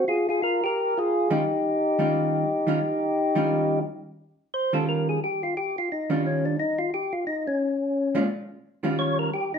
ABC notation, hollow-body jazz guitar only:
X:1
M:4/4
L:1/8
Q:"Swing" 1/4=175
K:Ebmix
V:1 name="Hollow-body jazz guitar"
z6 z [E,G,DF] | z3 [E,G,DF]3 z [E,G,DF] | z3 [E,G,DF]3 z2 | z3 [E,G,DF]3 z2 |
z3 [E,G,DF]3 z2 | z6 z [B,,A,DF] | z3 [E,G,DF]3 z2 |]